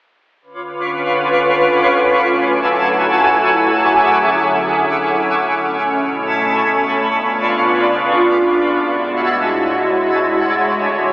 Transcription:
0, 0, Header, 1, 3, 480
1, 0, Start_track
1, 0, Key_signature, 3, "minor"
1, 0, Tempo, 500000
1, 10683, End_track
2, 0, Start_track
2, 0, Title_t, "Synth texture"
2, 0, Program_c, 0, 99
2, 400, Note_on_c, 0, 83, 73
2, 400, Note_on_c, 0, 86, 90
2, 401, Note_on_c, 0, 65, 80
2, 401, Note_on_c, 0, 73, 71
2, 1963, Note_off_c, 0, 73, 0
2, 1963, Note_off_c, 0, 83, 0
2, 1963, Note_off_c, 0, 86, 0
2, 1964, Note_off_c, 0, 65, 0
2, 1978, Note_on_c, 0, 80, 69
2, 1978, Note_on_c, 0, 88, 89
2, 1979, Note_on_c, 0, 66, 79
2, 1980, Note_on_c, 0, 69, 74
2, 3541, Note_off_c, 0, 80, 0
2, 3541, Note_off_c, 0, 88, 0
2, 3542, Note_off_c, 0, 66, 0
2, 3542, Note_off_c, 0, 69, 0
2, 3558, Note_on_c, 0, 76, 77
2, 3558, Note_on_c, 0, 86, 92
2, 3559, Note_on_c, 0, 68, 78
2, 3559, Note_on_c, 0, 78, 72
2, 3559, Note_on_c, 0, 85, 73
2, 5120, Note_off_c, 0, 76, 0
2, 5120, Note_off_c, 0, 78, 0
2, 5120, Note_off_c, 0, 86, 0
2, 5121, Note_off_c, 0, 68, 0
2, 5121, Note_off_c, 0, 85, 0
2, 5135, Note_on_c, 0, 69, 81
2, 5136, Note_on_c, 0, 80, 72
2, 5136, Note_on_c, 0, 83, 72
2, 5137, Note_on_c, 0, 85, 88
2, 6698, Note_off_c, 0, 69, 0
2, 6698, Note_off_c, 0, 80, 0
2, 6715, Note_on_c, 0, 65, 80
2, 6715, Note_on_c, 0, 74, 73
2, 8260, Note_off_c, 0, 83, 0
2, 8261, Note_off_c, 0, 85, 0
2, 8277, Note_off_c, 0, 65, 0
2, 8277, Note_off_c, 0, 74, 0
2, 8294, Note_on_c, 0, 66, 83
2, 8294, Note_on_c, 0, 76, 74
2, 8295, Note_on_c, 0, 80, 73
2, 8295, Note_on_c, 0, 81, 90
2, 9855, Note_off_c, 0, 66, 0
2, 9855, Note_off_c, 0, 76, 0
2, 9856, Note_off_c, 0, 81, 0
2, 9872, Note_on_c, 0, 66, 77
2, 9873, Note_on_c, 0, 62, 81
2, 9873, Note_on_c, 0, 73, 74
2, 9873, Note_on_c, 0, 76, 71
2, 10683, Note_off_c, 0, 62, 0
2, 10683, Note_off_c, 0, 66, 0
2, 10683, Note_off_c, 0, 73, 0
2, 10683, Note_off_c, 0, 76, 0
2, 10683, Note_off_c, 0, 80, 0
2, 10683, End_track
3, 0, Start_track
3, 0, Title_t, "Ambient pad"
3, 0, Program_c, 1, 92
3, 401, Note_on_c, 1, 65, 74
3, 402, Note_on_c, 1, 50, 76
3, 402, Note_on_c, 1, 61, 74
3, 402, Note_on_c, 1, 71, 86
3, 1964, Note_off_c, 1, 50, 0
3, 1964, Note_off_c, 1, 61, 0
3, 1964, Note_off_c, 1, 65, 0
3, 1964, Note_off_c, 1, 71, 0
3, 1978, Note_on_c, 1, 57, 72
3, 1978, Note_on_c, 1, 64, 73
3, 1978, Note_on_c, 1, 80, 89
3, 1979, Note_on_c, 1, 54, 80
3, 3541, Note_off_c, 1, 57, 0
3, 3557, Note_on_c, 1, 50, 75
3, 3557, Note_on_c, 1, 61, 71
3, 5104, Note_off_c, 1, 54, 0
3, 5104, Note_off_c, 1, 64, 0
3, 5120, Note_off_c, 1, 50, 0
3, 5135, Note_on_c, 1, 47, 80
3, 5135, Note_on_c, 1, 57, 72
3, 6675, Note_off_c, 1, 80, 0
3, 6682, Note_off_c, 1, 61, 0
3, 6698, Note_off_c, 1, 47, 0
3, 6698, Note_off_c, 1, 57, 0
3, 6712, Note_on_c, 1, 49, 77
3, 6713, Note_on_c, 1, 65, 91
3, 6714, Note_on_c, 1, 59, 71
3, 6714, Note_on_c, 1, 62, 72
3, 8275, Note_off_c, 1, 49, 0
3, 8276, Note_off_c, 1, 59, 0
3, 8276, Note_off_c, 1, 62, 0
3, 8276, Note_off_c, 1, 65, 0
3, 8292, Note_on_c, 1, 66, 84
3, 8293, Note_on_c, 1, 45, 81
3, 8293, Note_on_c, 1, 56, 72
3, 8293, Note_on_c, 1, 64, 73
3, 9855, Note_off_c, 1, 45, 0
3, 9855, Note_off_c, 1, 64, 0
3, 9869, Note_on_c, 1, 50, 79
3, 9869, Note_on_c, 1, 73, 71
3, 9870, Note_on_c, 1, 64, 74
3, 10683, Note_off_c, 1, 50, 0
3, 10683, Note_off_c, 1, 56, 0
3, 10683, Note_off_c, 1, 64, 0
3, 10683, Note_off_c, 1, 66, 0
3, 10683, Note_off_c, 1, 73, 0
3, 10683, End_track
0, 0, End_of_file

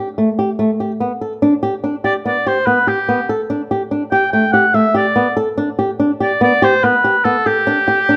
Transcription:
0, 0, Header, 1, 3, 480
1, 0, Start_track
1, 0, Tempo, 416378
1, 1644, Time_signature, 5, 2, 24, 8
1, 9413, End_track
2, 0, Start_track
2, 0, Title_t, "Oboe"
2, 0, Program_c, 0, 68
2, 2360, Note_on_c, 0, 74, 84
2, 2468, Note_off_c, 0, 74, 0
2, 2616, Note_on_c, 0, 74, 79
2, 2847, Note_on_c, 0, 72, 76
2, 2865, Note_off_c, 0, 74, 0
2, 3068, Note_on_c, 0, 71, 84
2, 3086, Note_off_c, 0, 72, 0
2, 3320, Note_on_c, 0, 67, 73
2, 3337, Note_off_c, 0, 71, 0
2, 3800, Note_off_c, 0, 67, 0
2, 4745, Note_on_c, 0, 79, 94
2, 4971, Note_off_c, 0, 79, 0
2, 4977, Note_on_c, 0, 79, 88
2, 5211, Note_off_c, 0, 79, 0
2, 5217, Note_on_c, 0, 78, 87
2, 5470, Note_on_c, 0, 76, 85
2, 5487, Note_off_c, 0, 78, 0
2, 5715, Note_off_c, 0, 76, 0
2, 5726, Note_on_c, 0, 74, 82
2, 6170, Note_off_c, 0, 74, 0
2, 7178, Note_on_c, 0, 74, 79
2, 7393, Note_off_c, 0, 74, 0
2, 7412, Note_on_c, 0, 74, 101
2, 7649, Note_on_c, 0, 72, 89
2, 7667, Note_off_c, 0, 74, 0
2, 7885, Note_on_c, 0, 71, 92
2, 7902, Note_off_c, 0, 72, 0
2, 8354, Note_on_c, 0, 69, 79
2, 8371, Note_off_c, 0, 71, 0
2, 8599, Note_on_c, 0, 67, 91
2, 8617, Note_off_c, 0, 69, 0
2, 9413, Note_off_c, 0, 67, 0
2, 9413, End_track
3, 0, Start_track
3, 0, Title_t, "Nylon-string guitar"
3, 0, Program_c, 1, 24
3, 207, Note_on_c, 1, 57, 59
3, 329, Note_off_c, 1, 57, 0
3, 446, Note_on_c, 1, 67, 63
3, 569, Note_off_c, 1, 67, 0
3, 680, Note_on_c, 1, 57, 65
3, 804, Note_off_c, 1, 57, 0
3, 924, Note_on_c, 1, 67, 55
3, 1047, Note_off_c, 1, 67, 0
3, 1158, Note_on_c, 1, 59, 65
3, 1282, Note_off_c, 1, 59, 0
3, 1400, Note_on_c, 1, 69, 52
3, 1524, Note_off_c, 1, 69, 0
3, 1640, Note_on_c, 1, 62, 77
3, 1763, Note_off_c, 1, 62, 0
3, 1876, Note_on_c, 1, 67, 66
3, 2001, Note_off_c, 1, 67, 0
3, 2117, Note_on_c, 1, 62, 60
3, 2242, Note_off_c, 1, 62, 0
3, 2355, Note_on_c, 1, 67, 63
3, 2480, Note_off_c, 1, 67, 0
3, 2599, Note_on_c, 1, 59, 64
3, 2723, Note_off_c, 1, 59, 0
3, 2842, Note_on_c, 1, 67, 65
3, 2965, Note_off_c, 1, 67, 0
3, 3076, Note_on_c, 1, 59, 63
3, 3200, Note_off_c, 1, 59, 0
3, 3311, Note_on_c, 1, 67, 59
3, 3436, Note_off_c, 1, 67, 0
3, 3558, Note_on_c, 1, 59, 69
3, 3681, Note_off_c, 1, 59, 0
3, 3796, Note_on_c, 1, 69, 66
3, 3920, Note_off_c, 1, 69, 0
3, 4033, Note_on_c, 1, 62, 76
3, 4158, Note_off_c, 1, 62, 0
3, 4277, Note_on_c, 1, 67, 66
3, 4401, Note_off_c, 1, 67, 0
3, 4510, Note_on_c, 1, 62, 63
3, 4636, Note_off_c, 1, 62, 0
3, 4751, Note_on_c, 1, 67, 67
3, 4876, Note_off_c, 1, 67, 0
3, 4993, Note_on_c, 1, 57, 64
3, 5118, Note_off_c, 1, 57, 0
3, 5229, Note_on_c, 1, 67, 63
3, 5354, Note_off_c, 1, 67, 0
3, 5466, Note_on_c, 1, 57, 68
3, 5593, Note_off_c, 1, 57, 0
3, 5700, Note_on_c, 1, 67, 62
3, 5828, Note_off_c, 1, 67, 0
3, 5945, Note_on_c, 1, 59, 70
3, 6072, Note_off_c, 1, 59, 0
3, 6186, Note_on_c, 1, 69, 72
3, 6312, Note_off_c, 1, 69, 0
3, 6428, Note_on_c, 1, 62, 82
3, 6554, Note_off_c, 1, 62, 0
3, 6671, Note_on_c, 1, 67, 71
3, 6796, Note_off_c, 1, 67, 0
3, 6911, Note_on_c, 1, 62, 66
3, 7037, Note_off_c, 1, 62, 0
3, 7153, Note_on_c, 1, 67, 68
3, 7278, Note_off_c, 1, 67, 0
3, 7389, Note_on_c, 1, 59, 76
3, 7516, Note_off_c, 1, 59, 0
3, 7633, Note_on_c, 1, 67, 77
3, 7758, Note_off_c, 1, 67, 0
3, 7881, Note_on_c, 1, 59, 74
3, 8004, Note_off_c, 1, 59, 0
3, 8119, Note_on_c, 1, 67, 65
3, 8243, Note_off_c, 1, 67, 0
3, 8358, Note_on_c, 1, 59, 75
3, 8483, Note_off_c, 1, 59, 0
3, 8602, Note_on_c, 1, 69, 58
3, 8726, Note_off_c, 1, 69, 0
3, 8841, Note_on_c, 1, 62, 87
3, 8965, Note_off_c, 1, 62, 0
3, 9081, Note_on_c, 1, 67, 71
3, 9205, Note_off_c, 1, 67, 0
3, 9326, Note_on_c, 1, 62, 73
3, 9413, Note_off_c, 1, 62, 0
3, 9413, End_track
0, 0, End_of_file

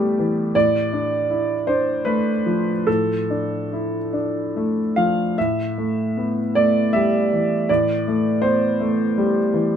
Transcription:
0, 0, Header, 1, 2, 480
1, 0, Start_track
1, 0, Key_signature, 0, "minor"
1, 0, Tempo, 751880
1, 349, Time_signature, 3, 2, 24, 8
1, 1315, Tempo, 820793
1, 3715, Tempo, 761421
1, 4675, Tempo, 738007
1, 6027, End_track
2, 0, Start_track
2, 0, Title_t, "Grand piano"
2, 0, Program_c, 0, 0
2, 0, Control_c, 0, 64, 127
2, 0, Note_on_c, 0, 45, 45
2, 0, Note_on_c, 0, 55, 45
2, 0, Note_on_c, 0, 57, 40
2, 0, Note_on_c, 0, 59, 33
2, 0, Note_on_c, 0, 67, 58
2, 0, Note_on_c, 0, 69, 61
2, 102, Note_off_c, 0, 67, 0
2, 121, Note_on_c, 0, 52, 42
2, 255, Note_off_c, 0, 55, 0
2, 316, Note_off_c, 0, 45, 0
2, 352, Note_on_c, 0, 74, 71
2, 353, Note_off_c, 0, 52, 0
2, 353, Note_on_c, 0, 45, 45
2, 359, Control_c, 0, 64, 0
2, 363, Note_off_c, 0, 57, 0
2, 363, Note_off_c, 0, 69, 0
2, 365, Note_off_c, 0, 59, 0
2, 469, Control_c, 0, 64, 127
2, 594, Note_on_c, 0, 62, 39
2, 831, Note_on_c, 0, 64, 30
2, 976, Note_off_c, 0, 62, 0
2, 1067, Note_on_c, 0, 72, 62
2, 1071, Note_off_c, 0, 64, 0
2, 1071, Note_off_c, 0, 74, 0
2, 1074, Note_on_c, 0, 62, 37
2, 1307, Note_on_c, 0, 71, 65
2, 1313, Note_off_c, 0, 72, 0
2, 1315, Note_on_c, 0, 57, 40
2, 1454, Note_off_c, 0, 62, 0
2, 1551, Note_on_c, 0, 53, 33
2, 1691, Note_off_c, 0, 57, 0
2, 1767, Note_off_c, 0, 45, 0
2, 1785, Note_off_c, 0, 71, 0
2, 1787, Note_on_c, 0, 69, 55
2, 1797, Note_on_c, 0, 45, 40
2, 1798, Control_c, 0, 64, 0
2, 1923, Control_c, 0, 64, 127
2, 1938, Note_off_c, 0, 53, 0
2, 2042, Note_on_c, 0, 62, 32
2, 2290, Note_on_c, 0, 64, 30
2, 2425, Note_off_c, 0, 62, 0
2, 2524, Note_off_c, 0, 64, 0
2, 2526, Note_on_c, 0, 62, 36
2, 2779, Note_on_c, 0, 57, 35
2, 2912, Note_off_c, 0, 62, 0
2, 3005, Note_off_c, 0, 69, 0
2, 3013, Note_on_c, 0, 77, 65
2, 3020, Note_on_c, 0, 53, 33
2, 3161, Note_off_c, 0, 57, 0
2, 3227, Note_off_c, 0, 45, 0
2, 3250, Note_off_c, 0, 77, 0
2, 3254, Note_off_c, 0, 53, 0
2, 3257, Control_c, 0, 64, 0
2, 3257, Note_on_c, 0, 76, 59
2, 3270, Note_on_c, 0, 45, 41
2, 3370, Control_c, 0, 64, 127
2, 3490, Note_on_c, 0, 57, 34
2, 3721, Note_on_c, 0, 59, 31
2, 3865, Note_off_c, 0, 57, 0
2, 3961, Note_on_c, 0, 74, 68
2, 3962, Note_off_c, 0, 59, 0
2, 3964, Note_off_c, 0, 76, 0
2, 3970, Note_on_c, 0, 57, 35
2, 4197, Note_on_c, 0, 76, 71
2, 4201, Note_off_c, 0, 74, 0
2, 4209, Note_on_c, 0, 55, 39
2, 4349, Note_off_c, 0, 57, 0
2, 4448, Note_on_c, 0, 52, 37
2, 4584, Note_off_c, 0, 55, 0
2, 4661, Note_off_c, 0, 45, 0
2, 4672, Note_off_c, 0, 76, 0
2, 4679, Note_on_c, 0, 74, 64
2, 4683, Note_on_c, 0, 45, 44
2, 4685, Control_c, 0, 64, 0
2, 4786, Control_c, 0, 64, 127
2, 4823, Note_off_c, 0, 52, 0
2, 4930, Note_on_c, 0, 57, 40
2, 5149, Note_on_c, 0, 72, 67
2, 5158, Note_off_c, 0, 74, 0
2, 5165, Note_on_c, 0, 59, 34
2, 5305, Note_off_c, 0, 57, 0
2, 5398, Note_off_c, 0, 59, 0
2, 5403, Note_on_c, 0, 57, 42
2, 5644, Note_on_c, 0, 55, 45
2, 5781, Note_off_c, 0, 57, 0
2, 5869, Note_off_c, 0, 72, 0
2, 5878, Note_on_c, 0, 52, 46
2, 6023, Note_off_c, 0, 55, 0
2, 6027, Note_off_c, 0, 45, 0
2, 6027, Note_off_c, 0, 52, 0
2, 6027, End_track
0, 0, End_of_file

